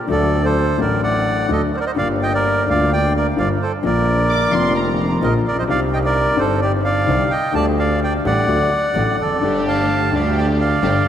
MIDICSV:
0, 0, Header, 1, 6, 480
1, 0, Start_track
1, 0, Key_signature, -2, "minor"
1, 0, Tempo, 466563
1, 87, Time_signature, 4, 2, 24, 8
1, 11400, End_track
2, 0, Start_track
2, 0, Title_t, "Violin section"
2, 0, Program_c, 0, 48
2, 4420, Note_on_c, 0, 86, 81
2, 4641, Note_off_c, 0, 86, 0
2, 4660, Note_on_c, 0, 84, 83
2, 4894, Note_on_c, 0, 82, 66
2, 4897, Note_off_c, 0, 84, 0
2, 5252, Note_off_c, 0, 82, 0
2, 11400, End_track
3, 0, Start_track
3, 0, Title_t, "Bandoneon"
3, 0, Program_c, 1, 23
3, 114, Note_on_c, 1, 69, 62
3, 115, Note_on_c, 1, 74, 75
3, 435, Note_off_c, 1, 69, 0
3, 461, Note_on_c, 1, 72, 81
3, 465, Note_on_c, 1, 69, 63
3, 470, Note_off_c, 1, 74, 0
3, 791, Note_off_c, 1, 69, 0
3, 824, Note_off_c, 1, 72, 0
3, 828, Note_on_c, 1, 70, 55
3, 833, Note_on_c, 1, 74, 67
3, 1041, Note_off_c, 1, 70, 0
3, 1043, Note_off_c, 1, 74, 0
3, 1065, Note_on_c, 1, 74, 61
3, 1066, Note_on_c, 1, 78, 81
3, 1506, Note_off_c, 1, 74, 0
3, 1554, Note_off_c, 1, 78, 0
3, 1563, Note_on_c, 1, 75, 69
3, 1565, Note_on_c, 1, 69, 54
3, 1665, Note_off_c, 1, 75, 0
3, 1667, Note_off_c, 1, 69, 0
3, 1795, Note_on_c, 1, 74, 67
3, 1802, Note_on_c, 1, 70, 54
3, 1808, Note_off_c, 1, 74, 0
3, 1814, Note_off_c, 1, 70, 0
3, 1816, Note_on_c, 1, 72, 56
3, 1840, Note_off_c, 1, 72, 0
3, 1855, Note_on_c, 1, 70, 55
3, 1857, Note_on_c, 1, 74, 68
3, 1902, Note_off_c, 1, 70, 0
3, 1903, Note_off_c, 1, 74, 0
3, 1914, Note_on_c, 1, 75, 69
3, 1921, Note_on_c, 1, 72, 51
3, 1964, Note_off_c, 1, 75, 0
3, 1969, Note_off_c, 1, 72, 0
3, 2035, Note_on_c, 1, 77, 80
3, 2037, Note_on_c, 1, 74, 59
3, 2139, Note_off_c, 1, 77, 0
3, 2141, Note_off_c, 1, 74, 0
3, 2291, Note_on_c, 1, 79, 76
3, 2295, Note_on_c, 1, 75, 58
3, 2390, Note_off_c, 1, 75, 0
3, 2398, Note_off_c, 1, 79, 0
3, 2407, Note_on_c, 1, 74, 83
3, 2416, Note_on_c, 1, 70, 64
3, 2735, Note_off_c, 1, 70, 0
3, 2766, Note_off_c, 1, 74, 0
3, 2774, Note_on_c, 1, 77, 75
3, 2782, Note_on_c, 1, 74, 59
3, 2987, Note_off_c, 1, 74, 0
3, 3005, Note_off_c, 1, 77, 0
3, 3010, Note_on_c, 1, 79, 84
3, 3016, Note_on_c, 1, 74, 67
3, 3221, Note_off_c, 1, 79, 0
3, 3224, Note_off_c, 1, 74, 0
3, 3258, Note_on_c, 1, 74, 70
3, 3269, Note_on_c, 1, 70, 49
3, 3358, Note_off_c, 1, 74, 0
3, 3366, Note_off_c, 1, 70, 0
3, 3480, Note_on_c, 1, 77, 68
3, 3491, Note_on_c, 1, 74, 54
3, 3584, Note_off_c, 1, 77, 0
3, 3592, Note_off_c, 1, 74, 0
3, 3720, Note_on_c, 1, 72, 65
3, 3732, Note_on_c, 1, 69, 53
3, 3824, Note_off_c, 1, 72, 0
3, 3833, Note_off_c, 1, 69, 0
3, 3965, Note_on_c, 1, 74, 79
3, 3970, Note_on_c, 1, 70, 56
3, 4867, Note_off_c, 1, 74, 0
3, 4869, Note_off_c, 1, 70, 0
3, 5385, Note_on_c, 1, 75, 72
3, 5394, Note_on_c, 1, 70, 57
3, 5489, Note_off_c, 1, 75, 0
3, 5496, Note_off_c, 1, 70, 0
3, 5630, Note_on_c, 1, 74, 75
3, 5633, Note_on_c, 1, 70, 59
3, 5731, Note_off_c, 1, 74, 0
3, 5733, Note_off_c, 1, 70, 0
3, 5742, Note_on_c, 1, 75, 71
3, 5754, Note_on_c, 1, 72, 55
3, 5793, Note_off_c, 1, 75, 0
3, 5802, Note_off_c, 1, 72, 0
3, 5865, Note_on_c, 1, 77, 84
3, 5866, Note_on_c, 1, 74, 64
3, 5968, Note_off_c, 1, 77, 0
3, 5969, Note_off_c, 1, 74, 0
3, 6105, Note_on_c, 1, 79, 82
3, 6119, Note_on_c, 1, 75, 61
3, 6154, Note_off_c, 1, 79, 0
3, 6165, Note_off_c, 1, 75, 0
3, 6230, Note_on_c, 1, 74, 89
3, 6232, Note_on_c, 1, 70, 69
3, 6551, Note_off_c, 1, 70, 0
3, 6572, Note_on_c, 1, 72, 80
3, 6583, Note_on_c, 1, 69, 54
3, 6585, Note_off_c, 1, 74, 0
3, 6788, Note_off_c, 1, 72, 0
3, 6793, Note_off_c, 1, 69, 0
3, 6807, Note_on_c, 1, 74, 83
3, 6814, Note_on_c, 1, 67, 66
3, 6912, Note_off_c, 1, 74, 0
3, 6917, Note_off_c, 1, 67, 0
3, 7042, Note_on_c, 1, 77, 85
3, 7053, Note_on_c, 1, 74, 63
3, 7489, Note_off_c, 1, 74, 0
3, 7517, Note_on_c, 1, 79, 81
3, 7530, Note_on_c, 1, 75, 61
3, 7531, Note_off_c, 1, 77, 0
3, 7746, Note_off_c, 1, 75, 0
3, 7763, Note_off_c, 1, 79, 0
3, 7767, Note_on_c, 1, 81, 91
3, 7778, Note_on_c, 1, 74, 68
3, 7872, Note_off_c, 1, 81, 0
3, 7881, Note_off_c, 1, 74, 0
3, 8015, Note_on_c, 1, 77, 76
3, 8017, Note_on_c, 1, 74, 59
3, 8230, Note_off_c, 1, 77, 0
3, 8231, Note_off_c, 1, 74, 0
3, 8266, Note_on_c, 1, 74, 64
3, 8266, Note_on_c, 1, 79, 75
3, 8368, Note_off_c, 1, 74, 0
3, 8368, Note_off_c, 1, 79, 0
3, 8501, Note_on_c, 1, 78, 84
3, 8504, Note_on_c, 1, 74, 67
3, 9425, Note_off_c, 1, 74, 0
3, 9474, Note_on_c, 1, 69, 59
3, 9474, Note_on_c, 1, 74, 72
3, 9494, Note_off_c, 1, 78, 0
3, 9911, Note_off_c, 1, 69, 0
3, 9911, Note_off_c, 1, 74, 0
3, 9953, Note_on_c, 1, 81, 86
3, 9963, Note_on_c, 1, 77, 62
3, 10395, Note_off_c, 1, 77, 0
3, 10436, Note_on_c, 1, 77, 71
3, 10437, Note_off_c, 1, 81, 0
3, 10447, Note_on_c, 1, 74, 58
3, 10653, Note_off_c, 1, 74, 0
3, 10668, Note_on_c, 1, 79, 75
3, 10670, Note_off_c, 1, 77, 0
3, 10678, Note_on_c, 1, 74, 62
3, 10772, Note_off_c, 1, 79, 0
3, 10779, Note_off_c, 1, 74, 0
3, 10909, Note_on_c, 1, 77, 81
3, 10910, Note_on_c, 1, 74, 61
3, 11400, Note_off_c, 1, 74, 0
3, 11400, Note_off_c, 1, 77, 0
3, 11400, End_track
4, 0, Start_track
4, 0, Title_t, "String section"
4, 0, Program_c, 2, 48
4, 9692, Note_on_c, 2, 57, 69
4, 9695, Note_on_c, 2, 62, 66
4, 9699, Note_on_c, 2, 67, 83
4, 10376, Note_off_c, 2, 57, 0
4, 10378, Note_off_c, 2, 62, 0
4, 10380, Note_off_c, 2, 67, 0
4, 10408, Note_on_c, 2, 57, 74
4, 10410, Note_on_c, 2, 67, 82
4, 10411, Note_on_c, 2, 62, 64
4, 11089, Note_off_c, 2, 57, 0
4, 11090, Note_off_c, 2, 67, 0
4, 11091, Note_off_c, 2, 62, 0
4, 11131, Note_on_c, 2, 62, 58
4, 11133, Note_on_c, 2, 57, 63
4, 11133, Note_on_c, 2, 67, 75
4, 11330, Note_off_c, 2, 57, 0
4, 11330, Note_off_c, 2, 62, 0
4, 11330, Note_off_c, 2, 67, 0
4, 11400, End_track
5, 0, Start_track
5, 0, Title_t, "Grand piano"
5, 0, Program_c, 3, 0
5, 70, Note_on_c, 3, 50, 73
5, 83, Note_on_c, 3, 54, 55
5, 85, Note_on_c, 3, 38, 70
5, 98, Note_on_c, 3, 57, 58
5, 114, Note_on_c, 3, 66, 68
5, 767, Note_off_c, 3, 54, 0
5, 768, Note_off_c, 3, 38, 0
5, 770, Note_off_c, 3, 50, 0
5, 775, Note_off_c, 3, 57, 0
5, 783, Note_off_c, 3, 66, 0
5, 789, Note_on_c, 3, 50, 60
5, 803, Note_on_c, 3, 54, 52
5, 807, Note_on_c, 3, 33, 65
5, 810, Note_on_c, 3, 45, 68
5, 816, Note_on_c, 3, 57, 52
5, 827, Note_on_c, 3, 66, 63
5, 1484, Note_off_c, 3, 50, 0
5, 1491, Note_off_c, 3, 54, 0
5, 1493, Note_off_c, 3, 33, 0
5, 1495, Note_off_c, 3, 45, 0
5, 1498, Note_off_c, 3, 57, 0
5, 1503, Note_off_c, 3, 66, 0
5, 1525, Note_on_c, 3, 50, 65
5, 1529, Note_on_c, 3, 38, 60
5, 1530, Note_on_c, 3, 57, 48
5, 1532, Note_on_c, 3, 54, 44
5, 1533, Note_on_c, 3, 66, 54
5, 1732, Note_off_c, 3, 50, 0
5, 1734, Note_off_c, 3, 38, 0
5, 1734, Note_off_c, 3, 57, 0
5, 1735, Note_off_c, 3, 54, 0
5, 1735, Note_off_c, 3, 66, 0
5, 1993, Note_on_c, 3, 50, 52
5, 2009, Note_on_c, 3, 55, 52
5, 2015, Note_on_c, 3, 31, 65
5, 2019, Note_on_c, 3, 43, 66
5, 2020, Note_on_c, 3, 58, 50
5, 2037, Note_on_c, 3, 65, 59
5, 2694, Note_off_c, 3, 50, 0
5, 2702, Note_off_c, 3, 55, 0
5, 2704, Note_off_c, 3, 31, 0
5, 2707, Note_off_c, 3, 43, 0
5, 2707, Note_off_c, 3, 58, 0
5, 2716, Note_off_c, 3, 65, 0
5, 2735, Note_on_c, 3, 50, 68
5, 2746, Note_on_c, 3, 55, 51
5, 2753, Note_on_c, 3, 38, 70
5, 2759, Note_on_c, 3, 58, 48
5, 2774, Note_on_c, 3, 65, 66
5, 3429, Note_off_c, 3, 55, 0
5, 3432, Note_off_c, 3, 38, 0
5, 3432, Note_off_c, 3, 50, 0
5, 3435, Note_off_c, 3, 58, 0
5, 3443, Note_off_c, 3, 65, 0
5, 3455, Note_on_c, 3, 50, 55
5, 3460, Note_on_c, 3, 31, 67
5, 3460, Note_on_c, 3, 58, 51
5, 3462, Note_on_c, 3, 55, 50
5, 3464, Note_on_c, 3, 43, 64
5, 3466, Note_on_c, 3, 65, 62
5, 3660, Note_off_c, 3, 50, 0
5, 3662, Note_off_c, 3, 58, 0
5, 3663, Note_off_c, 3, 31, 0
5, 3663, Note_off_c, 3, 55, 0
5, 3664, Note_off_c, 3, 43, 0
5, 3665, Note_off_c, 3, 65, 0
5, 3923, Note_on_c, 3, 50, 57
5, 3936, Note_on_c, 3, 53, 52
5, 3943, Note_on_c, 3, 34, 70
5, 3945, Note_on_c, 3, 46, 66
5, 3948, Note_on_c, 3, 58, 56
5, 3962, Note_on_c, 3, 65, 67
5, 4613, Note_off_c, 3, 50, 0
5, 4619, Note_off_c, 3, 53, 0
5, 4623, Note_off_c, 3, 34, 0
5, 4624, Note_off_c, 3, 46, 0
5, 4625, Note_off_c, 3, 58, 0
5, 4631, Note_on_c, 3, 50, 62
5, 4632, Note_off_c, 3, 65, 0
5, 4640, Note_on_c, 3, 53, 51
5, 4649, Note_on_c, 3, 29, 68
5, 4649, Note_on_c, 3, 41, 74
5, 4661, Note_on_c, 3, 58, 57
5, 4672, Note_on_c, 3, 65, 61
5, 5323, Note_off_c, 3, 50, 0
5, 5328, Note_off_c, 3, 53, 0
5, 5332, Note_off_c, 3, 29, 0
5, 5332, Note_off_c, 3, 41, 0
5, 5338, Note_off_c, 3, 58, 0
5, 5344, Note_off_c, 3, 65, 0
5, 5361, Note_on_c, 3, 50, 61
5, 5362, Note_on_c, 3, 46, 71
5, 5363, Note_on_c, 3, 53, 55
5, 5364, Note_on_c, 3, 34, 70
5, 5365, Note_on_c, 3, 65, 61
5, 5367, Note_on_c, 3, 58, 52
5, 5567, Note_off_c, 3, 46, 0
5, 5567, Note_off_c, 3, 50, 0
5, 5567, Note_off_c, 3, 53, 0
5, 5568, Note_off_c, 3, 34, 0
5, 5569, Note_off_c, 3, 65, 0
5, 5570, Note_off_c, 3, 58, 0
5, 5664, Note_on_c, 3, 33, 42
5, 5717, Note_on_c, 3, 34, 51
5, 5726, Note_off_c, 3, 33, 0
5, 5781, Note_on_c, 3, 35, 60
5, 5782, Note_off_c, 3, 34, 0
5, 5821, Note_on_c, 3, 62, 61
5, 5834, Note_on_c, 3, 55, 55
5, 5842, Note_on_c, 3, 36, 70
5, 5842, Note_on_c, 3, 48, 68
5, 5845, Note_off_c, 3, 35, 0
5, 5849, Note_on_c, 3, 60, 56
5, 5864, Note_on_c, 3, 63, 67
5, 6513, Note_off_c, 3, 62, 0
5, 6519, Note_off_c, 3, 55, 0
5, 6523, Note_off_c, 3, 36, 0
5, 6523, Note_off_c, 3, 48, 0
5, 6527, Note_off_c, 3, 60, 0
5, 6529, Note_on_c, 3, 62, 63
5, 6534, Note_off_c, 3, 63, 0
5, 6542, Note_on_c, 3, 55, 56
5, 6548, Note_on_c, 3, 43, 73
5, 6551, Note_on_c, 3, 31, 69
5, 6558, Note_on_c, 3, 60, 57
5, 6569, Note_on_c, 3, 63, 72
5, 7222, Note_off_c, 3, 62, 0
5, 7229, Note_off_c, 3, 55, 0
5, 7232, Note_off_c, 3, 43, 0
5, 7233, Note_off_c, 3, 31, 0
5, 7237, Note_off_c, 3, 60, 0
5, 7243, Note_off_c, 3, 63, 0
5, 7268, Note_on_c, 3, 36, 68
5, 7268, Note_on_c, 3, 50, 57
5, 7270, Note_on_c, 3, 55, 52
5, 7272, Note_on_c, 3, 48, 66
5, 7272, Note_on_c, 3, 60, 51
5, 7275, Note_on_c, 3, 63, 69
5, 7472, Note_off_c, 3, 36, 0
5, 7472, Note_off_c, 3, 50, 0
5, 7473, Note_off_c, 3, 55, 0
5, 7474, Note_off_c, 3, 48, 0
5, 7474, Note_off_c, 3, 60, 0
5, 7475, Note_off_c, 3, 63, 0
5, 7735, Note_on_c, 3, 50, 74
5, 7752, Note_on_c, 3, 55, 57
5, 7753, Note_on_c, 3, 38, 71
5, 7766, Note_on_c, 3, 57, 54
5, 7773, Note_on_c, 3, 67, 66
5, 8440, Note_off_c, 3, 55, 0
5, 8441, Note_off_c, 3, 38, 0
5, 8442, Note_off_c, 3, 50, 0
5, 8448, Note_off_c, 3, 57, 0
5, 8451, Note_off_c, 3, 67, 0
5, 8480, Note_on_c, 3, 55, 53
5, 8481, Note_on_c, 3, 50, 59
5, 8482, Note_on_c, 3, 33, 70
5, 8486, Note_on_c, 3, 67, 67
5, 8487, Note_on_c, 3, 45, 69
5, 8488, Note_on_c, 3, 57, 55
5, 8682, Note_off_c, 3, 55, 0
5, 8683, Note_off_c, 3, 33, 0
5, 8683, Note_off_c, 3, 50, 0
5, 8685, Note_off_c, 3, 67, 0
5, 8686, Note_off_c, 3, 45, 0
5, 8687, Note_off_c, 3, 57, 0
5, 8724, Note_on_c, 3, 50, 72
5, 8725, Note_on_c, 3, 57, 58
5, 8727, Note_on_c, 3, 54, 55
5, 8730, Note_on_c, 3, 38, 69
5, 8735, Note_on_c, 3, 66, 69
5, 8927, Note_off_c, 3, 57, 0
5, 8928, Note_off_c, 3, 50, 0
5, 8928, Note_off_c, 3, 54, 0
5, 8929, Note_off_c, 3, 38, 0
5, 8932, Note_off_c, 3, 66, 0
5, 9214, Note_on_c, 3, 45, 59
5, 9214, Note_on_c, 3, 54, 48
5, 9218, Note_on_c, 3, 50, 53
5, 9220, Note_on_c, 3, 33, 66
5, 9221, Note_on_c, 3, 57, 46
5, 9221, Note_on_c, 3, 66, 62
5, 9417, Note_off_c, 3, 45, 0
5, 9417, Note_off_c, 3, 54, 0
5, 9419, Note_off_c, 3, 50, 0
5, 9420, Note_off_c, 3, 33, 0
5, 9420, Note_off_c, 3, 57, 0
5, 9420, Note_off_c, 3, 66, 0
5, 9518, Note_on_c, 3, 40, 38
5, 9577, Note_off_c, 3, 40, 0
5, 9584, Note_on_c, 3, 41, 46
5, 9627, Note_on_c, 3, 42, 53
5, 9639, Note_off_c, 3, 41, 0
5, 9675, Note_on_c, 3, 50, 55
5, 9685, Note_on_c, 3, 55, 52
5, 9691, Note_off_c, 3, 42, 0
5, 9694, Note_on_c, 3, 43, 65
5, 9696, Note_on_c, 3, 31, 66
5, 9703, Note_on_c, 3, 57, 51
5, 9709, Note_on_c, 3, 67, 58
5, 10367, Note_off_c, 3, 50, 0
5, 10372, Note_off_c, 3, 55, 0
5, 10377, Note_off_c, 3, 43, 0
5, 10378, Note_off_c, 3, 31, 0
5, 10382, Note_off_c, 3, 57, 0
5, 10385, Note_off_c, 3, 67, 0
5, 10393, Note_on_c, 3, 50, 56
5, 10407, Note_on_c, 3, 55, 54
5, 10408, Note_off_c, 3, 50, 0
5, 10413, Note_on_c, 3, 38, 70
5, 10414, Note_on_c, 3, 50, 68
5, 10415, Note_on_c, 3, 57, 51
5, 10435, Note_on_c, 3, 67, 62
5, 11089, Note_off_c, 3, 55, 0
5, 11092, Note_off_c, 3, 38, 0
5, 11092, Note_off_c, 3, 50, 0
5, 11093, Note_off_c, 3, 57, 0
5, 11103, Note_off_c, 3, 67, 0
5, 11133, Note_on_c, 3, 50, 58
5, 11135, Note_on_c, 3, 31, 64
5, 11136, Note_on_c, 3, 55, 49
5, 11137, Note_on_c, 3, 43, 66
5, 11138, Note_on_c, 3, 67, 65
5, 11141, Note_on_c, 3, 57, 53
5, 11331, Note_off_c, 3, 31, 0
5, 11331, Note_off_c, 3, 50, 0
5, 11332, Note_off_c, 3, 55, 0
5, 11333, Note_off_c, 3, 43, 0
5, 11333, Note_off_c, 3, 67, 0
5, 11334, Note_off_c, 3, 57, 0
5, 11400, End_track
6, 0, Start_track
6, 0, Title_t, "Double bass"
6, 0, Program_c, 4, 43
6, 91, Note_on_c, 4, 38, 85
6, 771, Note_off_c, 4, 38, 0
6, 807, Note_on_c, 4, 33, 81
6, 1493, Note_off_c, 4, 33, 0
6, 1533, Note_on_c, 4, 38, 70
6, 1736, Note_off_c, 4, 38, 0
6, 2018, Note_on_c, 4, 31, 76
6, 2706, Note_off_c, 4, 31, 0
6, 2750, Note_on_c, 4, 38, 79
6, 3431, Note_off_c, 4, 38, 0
6, 3470, Note_on_c, 4, 31, 76
6, 3667, Note_off_c, 4, 31, 0
6, 3954, Note_on_c, 4, 34, 84
6, 4628, Note_off_c, 4, 34, 0
6, 4659, Note_on_c, 4, 29, 86
6, 5337, Note_off_c, 4, 29, 0
6, 5370, Note_on_c, 4, 34, 80
6, 5571, Note_off_c, 4, 34, 0
6, 5609, Note_on_c, 4, 34, 56
6, 5843, Note_off_c, 4, 34, 0
6, 5850, Note_on_c, 4, 36, 89
6, 6527, Note_off_c, 4, 36, 0
6, 6558, Note_on_c, 4, 31, 80
6, 7237, Note_off_c, 4, 31, 0
6, 7277, Note_on_c, 4, 36, 86
6, 7476, Note_off_c, 4, 36, 0
6, 7750, Note_on_c, 4, 38, 86
6, 8440, Note_off_c, 4, 38, 0
6, 8479, Note_on_c, 4, 33, 82
6, 8682, Note_off_c, 4, 33, 0
6, 8720, Note_on_c, 4, 38, 69
6, 8925, Note_off_c, 4, 38, 0
6, 9205, Note_on_c, 4, 33, 72
6, 9413, Note_off_c, 4, 33, 0
6, 9462, Note_on_c, 4, 29, 50
6, 9687, Note_off_c, 4, 29, 0
6, 9693, Note_on_c, 4, 31, 78
6, 10377, Note_off_c, 4, 31, 0
6, 10415, Note_on_c, 4, 38, 82
6, 11093, Note_off_c, 4, 38, 0
6, 11131, Note_on_c, 4, 31, 80
6, 11329, Note_off_c, 4, 31, 0
6, 11365, Note_on_c, 4, 37, 54
6, 11400, Note_off_c, 4, 37, 0
6, 11400, End_track
0, 0, End_of_file